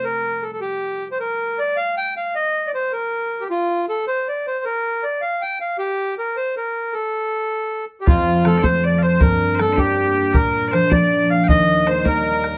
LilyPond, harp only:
\new Staff \with { instrumentName = "Harp" } { \time 6/8 \key f \mixolydian \tempo 4. = 105 r2. | r2. | r2. | r2. |
r2. | r2. | r2. | f,4 <f a c'>8 <f c'>4 r8 |
g,4 <g bes d'>8 <g bes d'>4 r8 | bes,4 <f bes d'>8 <f bes d'>4 r8 | ees,4 <g bes ees'>8 <g bes ees'>4 r8 | }